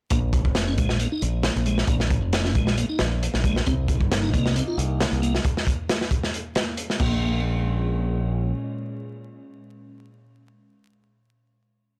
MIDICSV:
0, 0, Header, 1, 5, 480
1, 0, Start_track
1, 0, Key_signature, -5, "minor"
1, 0, Tempo, 444444
1, 122, Time_signature, 4, 2, 24, 8
1, 12954, End_track
2, 0, Start_track
2, 0, Title_t, "Tonewheel organ"
2, 0, Program_c, 0, 16
2, 122, Note_on_c, 0, 58, 80
2, 207, Note_off_c, 0, 58, 0
2, 728, Note_on_c, 0, 61, 77
2, 804, Note_off_c, 0, 61, 0
2, 840, Note_on_c, 0, 56, 75
2, 1070, Note_off_c, 0, 56, 0
2, 1079, Note_on_c, 0, 58, 83
2, 1166, Note_off_c, 0, 58, 0
2, 1209, Note_on_c, 0, 63, 103
2, 1316, Note_off_c, 0, 63, 0
2, 1799, Note_on_c, 0, 56, 101
2, 1921, Note_off_c, 0, 56, 0
2, 2038, Note_on_c, 0, 58, 83
2, 2125, Note_off_c, 0, 58, 0
2, 2645, Note_on_c, 0, 61, 82
2, 2723, Note_off_c, 0, 61, 0
2, 2759, Note_on_c, 0, 56, 79
2, 2989, Note_off_c, 0, 56, 0
2, 3000, Note_on_c, 0, 58, 82
2, 3086, Note_off_c, 0, 58, 0
2, 3124, Note_on_c, 0, 63, 103
2, 3234, Note_off_c, 0, 63, 0
2, 3717, Note_on_c, 0, 56, 103
2, 3840, Note_off_c, 0, 56, 0
2, 3956, Note_on_c, 0, 60, 83
2, 4044, Note_off_c, 0, 60, 0
2, 4569, Note_on_c, 0, 63, 80
2, 4645, Note_off_c, 0, 63, 0
2, 4679, Note_on_c, 0, 58, 83
2, 4909, Note_off_c, 0, 58, 0
2, 4920, Note_on_c, 0, 60, 86
2, 5006, Note_off_c, 0, 60, 0
2, 5050, Note_on_c, 0, 65, 107
2, 5156, Note_off_c, 0, 65, 0
2, 5640, Note_on_c, 0, 58, 102
2, 5762, Note_off_c, 0, 58, 0
2, 7559, Note_on_c, 0, 58, 94
2, 8007, Note_off_c, 0, 58, 0
2, 12954, End_track
3, 0, Start_track
3, 0, Title_t, "Ambient pad"
3, 0, Program_c, 1, 92
3, 3966, Note_on_c, 1, 63, 92
3, 3967, Note_on_c, 1, 48, 87
3, 3968, Note_on_c, 1, 58, 80
3, 5865, Note_off_c, 1, 48, 0
3, 5865, Note_off_c, 1, 63, 0
3, 5866, Note_off_c, 1, 58, 0
3, 7564, Note_on_c, 1, 56, 79
3, 7566, Note_on_c, 1, 46, 81
3, 7569, Note_on_c, 1, 61, 92
3, 10892, Note_off_c, 1, 56, 0
3, 10894, Note_off_c, 1, 46, 0
3, 10897, Note_off_c, 1, 61, 0
3, 12954, End_track
4, 0, Start_track
4, 0, Title_t, "Picked electric bass"
4, 0, Program_c, 2, 34
4, 118, Note_on_c, 2, 34, 97
4, 484, Note_off_c, 2, 34, 0
4, 484, Note_on_c, 2, 29, 97
4, 846, Note_off_c, 2, 29, 0
4, 846, Note_on_c, 2, 34, 82
4, 1130, Note_off_c, 2, 34, 0
4, 1320, Note_on_c, 2, 34, 88
4, 1607, Note_off_c, 2, 34, 0
4, 1686, Note_on_c, 2, 34, 96
4, 1968, Note_off_c, 2, 34, 0
4, 2026, Note_on_c, 2, 34, 100
4, 2407, Note_off_c, 2, 34, 0
4, 2407, Note_on_c, 2, 29, 98
4, 2758, Note_off_c, 2, 29, 0
4, 2758, Note_on_c, 2, 34, 86
4, 3046, Note_off_c, 2, 34, 0
4, 3242, Note_on_c, 2, 34, 90
4, 3528, Note_off_c, 2, 34, 0
4, 3610, Note_on_c, 2, 34, 93
4, 3890, Note_off_c, 2, 34, 0
4, 3966, Note_on_c, 2, 36, 100
4, 4326, Note_off_c, 2, 36, 0
4, 4326, Note_on_c, 2, 31, 99
4, 4685, Note_off_c, 2, 31, 0
4, 4685, Note_on_c, 2, 36, 84
4, 4969, Note_off_c, 2, 36, 0
4, 5159, Note_on_c, 2, 36, 93
4, 5446, Note_off_c, 2, 36, 0
4, 5526, Note_on_c, 2, 36, 96
4, 5808, Note_off_c, 2, 36, 0
4, 7560, Note_on_c, 2, 34, 98
4, 9197, Note_off_c, 2, 34, 0
4, 12954, End_track
5, 0, Start_track
5, 0, Title_t, "Drums"
5, 112, Note_on_c, 9, 42, 95
5, 117, Note_on_c, 9, 36, 105
5, 220, Note_off_c, 9, 42, 0
5, 225, Note_off_c, 9, 36, 0
5, 355, Note_on_c, 9, 36, 104
5, 360, Note_on_c, 9, 42, 63
5, 463, Note_off_c, 9, 36, 0
5, 468, Note_off_c, 9, 42, 0
5, 485, Note_on_c, 9, 36, 104
5, 593, Note_off_c, 9, 36, 0
5, 593, Note_on_c, 9, 38, 118
5, 597, Note_on_c, 9, 42, 88
5, 701, Note_off_c, 9, 38, 0
5, 705, Note_off_c, 9, 42, 0
5, 839, Note_on_c, 9, 42, 66
5, 845, Note_on_c, 9, 36, 92
5, 947, Note_off_c, 9, 42, 0
5, 953, Note_off_c, 9, 36, 0
5, 962, Note_on_c, 9, 38, 51
5, 1070, Note_off_c, 9, 38, 0
5, 1075, Note_on_c, 9, 42, 88
5, 1183, Note_off_c, 9, 42, 0
5, 1318, Note_on_c, 9, 42, 67
5, 1426, Note_off_c, 9, 42, 0
5, 1549, Note_on_c, 9, 38, 124
5, 1561, Note_on_c, 9, 42, 91
5, 1657, Note_off_c, 9, 38, 0
5, 1669, Note_off_c, 9, 42, 0
5, 1688, Note_on_c, 9, 42, 40
5, 1791, Note_off_c, 9, 42, 0
5, 1791, Note_on_c, 9, 42, 75
5, 1899, Note_off_c, 9, 42, 0
5, 1921, Note_on_c, 9, 38, 50
5, 2025, Note_on_c, 9, 36, 111
5, 2025, Note_on_c, 9, 42, 93
5, 2029, Note_off_c, 9, 38, 0
5, 2133, Note_off_c, 9, 36, 0
5, 2133, Note_off_c, 9, 42, 0
5, 2160, Note_on_c, 9, 38, 53
5, 2268, Note_off_c, 9, 38, 0
5, 2273, Note_on_c, 9, 36, 97
5, 2276, Note_on_c, 9, 42, 72
5, 2381, Note_off_c, 9, 36, 0
5, 2384, Note_off_c, 9, 42, 0
5, 2513, Note_on_c, 9, 42, 93
5, 2518, Note_on_c, 9, 38, 124
5, 2621, Note_off_c, 9, 42, 0
5, 2626, Note_off_c, 9, 38, 0
5, 2644, Note_on_c, 9, 38, 51
5, 2752, Note_off_c, 9, 38, 0
5, 2753, Note_on_c, 9, 42, 73
5, 2757, Note_on_c, 9, 36, 88
5, 2861, Note_off_c, 9, 42, 0
5, 2865, Note_off_c, 9, 36, 0
5, 2883, Note_on_c, 9, 38, 54
5, 2991, Note_off_c, 9, 38, 0
5, 2997, Note_on_c, 9, 42, 91
5, 3105, Note_off_c, 9, 42, 0
5, 3227, Note_on_c, 9, 38, 114
5, 3238, Note_on_c, 9, 42, 71
5, 3335, Note_off_c, 9, 38, 0
5, 3346, Note_off_c, 9, 42, 0
5, 3486, Note_on_c, 9, 42, 93
5, 3594, Note_off_c, 9, 42, 0
5, 3604, Note_on_c, 9, 38, 41
5, 3712, Note_off_c, 9, 38, 0
5, 3715, Note_on_c, 9, 36, 90
5, 3720, Note_on_c, 9, 42, 65
5, 3823, Note_off_c, 9, 36, 0
5, 3828, Note_off_c, 9, 42, 0
5, 3848, Note_on_c, 9, 38, 51
5, 3956, Note_off_c, 9, 38, 0
5, 3958, Note_on_c, 9, 42, 82
5, 3964, Note_on_c, 9, 36, 110
5, 4066, Note_off_c, 9, 42, 0
5, 4072, Note_off_c, 9, 36, 0
5, 4194, Note_on_c, 9, 36, 93
5, 4203, Note_on_c, 9, 42, 64
5, 4302, Note_off_c, 9, 36, 0
5, 4311, Note_off_c, 9, 42, 0
5, 4326, Note_on_c, 9, 36, 92
5, 4434, Note_off_c, 9, 36, 0
5, 4445, Note_on_c, 9, 38, 127
5, 4447, Note_on_c, 9, 42, 101
5, 4553, Note_off_c, 9, 38, 0
5, 4555, Note_off_c, 9, 42, 0
5, 4683, Note_on_c, 9, 36, 92
5, 4687, Note_on_c, 9, 42, 71
5, 4791, Note_off_c, 9, 36, 0
5, 4795, Note_off_c, 9, 42, 0
5, 4812, Note_on_c, 9, 38, 52
5, 4920, Note_off_c, 9, 38, 0
5, 4924, Note_on_c, 9, 42, 89
5, 5032, Note_off_c, 9, 42, 0
5, 5171, Note_on_c, 9, 42, 68
5, 5279, Note_off_c, 9, 42, 0
5, 5405, Note_on_c, 9, 38, 127
5, 5409, Note_on_c, 9, 42, 91
5, 5513, Note_off_c, 9, 38, 0
5, 5517, Note_off_c, 9, 42, 0
5, 5539, Note_on_c, 9, 42, 40
5, 5647, Note_off_c, 9, 42, 0
5, 5648, Note_on_c, 9, 42, 69
5, 5756, Note_off_c, 9, 42, 0
5, 5774, Note_on_c, 9, 38, 53
5, 5882, Note_off_c, 9, 38, 0
5, 5883, Note_on_c, 9, 36, 108
5, 5885, Note_on_c, 9, 42, 88
5, 5991, Note_off_c, 9, 36, 0
5, 5993, Note_off_c, 9, 42, 0
5, 6018, Note_on_c, 9, 38, 48
5, 6121, Note_on_c, 9, 36, 92
5, 6126, Note_off_c, 9, 38, 0
5, 6128, Note_on_c, 9, 42, 74
5, 6229, Note_off_c, 9, 36, 0
5, 6236, Note_off_c, 9, 42, 0
5, 6366, Note_on_c, 9, 38, 118
5, 6366, Note_on_c, 9, 42, 104
5, 6474, Note_off_c, 9, 38, 0
5, 6474, Note_off_c, 9, 42, 0
5, 6494, Note_on_c, 9, 38, 51
5, 6598, Note_on_c, 9, 36, 102
5, 6602, Note_off_c, 9, 38, 0
5, 6603, Note_on_c, 9, 42, 67
5, 6706, Note_off_c, 9, 36, 0
5, 6711, Note_off_c, 9, 42, 0
5, 6733, Note_on_c, 9, 38, 50
5, 6841, Note_off_c, 9, 38, 0
5, 6846, Note_on_c, 9, 42, 84
5, 6954, Note_off_c, 9, 42, 0
5, 7077, Note_on_c, 9, 42, 77
5, 7083, Note_on_c, 9, 38, 117
5, 7185, Note_off_c, 9, 42, 0
5, 7191, Note_off_c, 9, 38, 0
5, 7316, Note_on_c, 9, 42, 98
5, 7424, Note_off_c, 9, 42, 0
5, 7450, Note_on_c, 9, 38, 46
5, 7558, Note_off_c, 9, 38, 0
5, 7558, Note_on_c, 9, 36, 110
5, 7561, Note_on_c, 9, 49, 91
5, 7666, Note_off_c, 9, 36, 0
5, 7669, Note_off_c, 9, 49, 0
5, 12954, End_track
0, 0, End_of_file